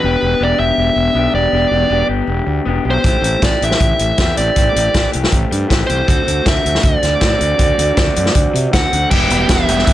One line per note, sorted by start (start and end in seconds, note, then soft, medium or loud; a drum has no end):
0.00 0.15 E1 medium
0.00 0.39 B3 medium
0.00 0.24 D4 medium
0.00 0.44 B4 medium
0.05 0.21 G4 medium
0.21 0.33 E1 medium
0.21 0.41 D4 soft
0.21 0.41 G4 medium
0.40 0.52 E1 medium
0.40 1.15 B3 medium
0.40 0.60 D4 medium
0.40 0.58 G4 medium
0.40 0.59 D5 medium
0.58 0.71 E1 medium
0.58 1.15 D4 soft
0.58 1.17 G4 medium
0.58 1.34 E5 medium
0.77 0.89 E1 medium
0.96 1.08 E1 medium
1.14 1.26 B1 medium
1.14 1.51 B3 medium
1.14 1.35 D4 medium
1.14 1.34 G4 medium
1.34 1.46 E1 medium
1.34 1.52 D4 soft
1.34 1.54 G4 medium
1.34 2.06 D5 medium
1.52 1.64 E1 medium
1.52 1.88 B3 medium
1.52 1.72 D4 medium
1.52 1.71 G4 medium
1.71 1.83 E1 medium
1.71 1.90 D4 medium
1.71 1.92 G4 medium
1.90 2.02 E1 medium
1.90 2.28 B3 medium
1.90 2.10 D4 medium
1.90 2.08 G4 medium
2.08 2.21 G1 medium
2.08 2.66 D4 soft
2.08 2.68 G4 medium
2.27 2.39 E1 medium
2.47 2.59 D2 medium
2.65 2.78 E1 medium
2.65 3.03 B3 medium
2.65 2.86 D4 medium
2.65 2.85 G4 medium
2.85 2.97 B1 medium
2.85 3.05 D4 soft
2.85 3.06 G4 medium
2.90 3.47 C5 medium
3.04 3.16 A1 medium
3.04 3.42 E3 medium
3.04 3.25 A3 medium
3.04 3.24 C4 medium
3.04 3.23 G4 medium
3.04 kick medium
3.04 closed hi-hat medium
3.22 3.34 A1 medium
3.22 3.42 A3 medium
3.22 3.43 C4 medium
3.22 3.45 G4 medium
3.22 closed hi-hat medium
3.42 3.54 A1 medium
3.42 4.18 E3 medium
3.42 3.63 A3 medium
3.42 3.62 C4 medium
3.42 3.61 G4 medium
3.42 3.63 D5 medium
3.42 kick loud
3.42 snare medium
3.42 closed hi-hat medium
3.61 3.73 A1 medium
3.61 4.19 A3 soft
3.61 4.20 C4 soft
3.61 4.20 G4 medium
3.61 4.37 E5 medium
3.61 closed hi-hat medium
3.71 snare medium
3.80 3.92 A1 medium
3.80 kick medium
3.80 closed hi-hat medium
3.99 4.11 A1 medium
3.99 closed hi-hat medium
4.18 4.30 E2 medium
4.18 4.54 E3 medium
4.18 4.39 A3 medium
4.18 4.38 C4 medium
4.18 4.35 G4 medium
4.18 kick medium
4.18 snare medium
4.18 closed hi-hat medium
4.37 4.49 A1 medium
4.37 4.56 A3 medium
4.37 4.57 C4 medium
4.37 4.57 G4 medium
4.37 5.09 D5 medium
4.37 closed hi-hat medium
4.55 4.68 A1 medium
4.55 4.92 E3 medium
4.55 4.77 A3 medium
4.55 4.76 C4 medium
4.55 4.74 G4 medium
4.55 kick medium
4.55 closed hi-hat medium
4.75 4.87 A1 medium
4.75 4.94 A3 soft
4.75 4.94 C4 medium
4.75 4.95 G4 medium
4.75 closed hi-hat medium
4.93 5.06 A1 medium
4.93 5.32 E3 medium
4.93 5.15 A3 medium
4.93 5.13 C4 medium
4.93 5.11 G4 medium
4.93 kick medium
4.93 snare loud
4.93 closed hi-hat medium
5.12 5.26 C2 medium
5.12 5.69 A3 soft
5.12 5.70 C4 medium
5.12 5.69 G4 medium
5.12 closed hi-hat medium
5.24 snare medium
5.32 5.44 A1 medium
5.32 kick medium
5.32 closed hi-hat medium
5.52 5.63 G2 medium
5.52 closed hi-hat medium
5.69 5.82 A1 medium
5.69 6.06 E3 medium
5.69 5.90 A3 medium
5.69 5.89 C4 medium
5.69 5.86 G4 medium
5.69 kick medium
5.69 snare medium
5.69 closed hi-hat medium
5.87 6.01 C2 medium
5.87 6.06 A3 medium
5.87 6.07 C4 medium
5.87 6.06 G4 medium
5.87 6.47 C5 medium
5.87 closed hi-hat medium
6.06 6.20 D2 medium
6.06 6.43 A3 medium
6.06 6.27 C4 medium
6.06 6.25 F#4 medium
6.06 kick loud
6.06 closed hi-hat medium
6.25 6.38 D2 medium
6.25 6.45 C4 soft
6.25 6.46 F#4 medium
6.25 closed hi-hat medium
6.44 6.58 D2 medium
6.44 7.19 A3 medium
6.44 6.65 C4 medium
6.44 6.62 F#4 medium
6.44 6.83 E5 medium
6.44 kick loud
6.44 snare loud
6.44 closed hi-hat medium
6.62 6.77 D2 medium
6.62 7.20 C4 soft
6.62 7.21 F#4 medium
6.62 closed hi-hat soft
6.75 snare medium
6.83 6.95 D2 medium
6.83 8.70 D5 medium
6.83 kick loud
6.83 closed hi-hat medium
7.03 7.14 D2 medium
7.03 snare soft
7.03 closed hi-hat medium
7.20 7.33 A2 medium
7.20 7.56 A3 medium
7.20 7.40 C4 medium
7.20 7.37 F#4 medium
7.20 kick medium
7.20 snare medium
7.20 closed hi-hat medium
7.39 7.52 D2 medium
7.39 7.57 C4 medium
7.39 7.59 F#4 medium
7.39 closed hi-hat soft
7.57 7.71 D2 medium
7.57 7.95 A3 medium
7.57 7.78 C4 medium
7.57 7.76 F#4 medium
7.57 kick medium
7.57 closed hi-hat medium
7.77 7.90 D2 medium
7.77 7.96 C4 soft
7.77 7.97 F#4 medium
7.77 closed hi-hat medium
7.97 8.09 D2 medium
7.97 8.35 A3 medium
7.97 8.17 C4 medium
7.97 8.15 F#4 medium
7.97 kick loud
7.97 snare medium
7.97 closed hi-hat medium
8.16 8.28 F#2 medium
8.16 8.73 C4 soft
8.16 8.74 F#4 medium
8.16 closed hi-hat medium
8.26 snare medium
8.35 8.47 D2 medium
8.35 kick medium
8.35 closed hi-hat medium
8.54 8.66 C3 medium
8.54 closed hi-hat medium
8.73 8.85 D2 medium
8.73 9.10 A3 medium
8.73 8.93 C4 medium
8.73 8.91 F#4 medium
8.73 9.09 F#5 medium
8.73 kick medium
8.73 snare medium
8.73 closed hi-hat medium
8.92 9.04 D2 medium
8.92 9.12 C4 medium
8.92 9.11 F#4 medium
8.92 closed hi-hat medium
9.11 9.29 E1 medium
9.11 9.70 E3 medium
9.11 9.93 G3 medium
9.11 9.70 B3 medium
9.11 9.69 E4 medium
9.11 9.68 G4 medium
9.11 9.47 G5 medium
9.11 kick medium
9.11 crash loud
9.30 9.48 E1 medium
9.30 closed hi-hat medium
9.49 9.67 E1 medium
9.49 9.84 E5 medium
9.49 kick loud
9.49 snare loud
9.49 closed hi-hat medium
9.68 9.86 E1 medium
9.68 9.93 E3 medium
9.68 9.93 B3 medium
9.68 9.93 E4 medium
9.68 9.93 G4 medium
9.68 closed hi-hat medium
9.79 snare soft
9.86 9.93 E1 medium
9.86 9.93 E5 medium
9.86 kick loud
9.86 closed hi-hat medium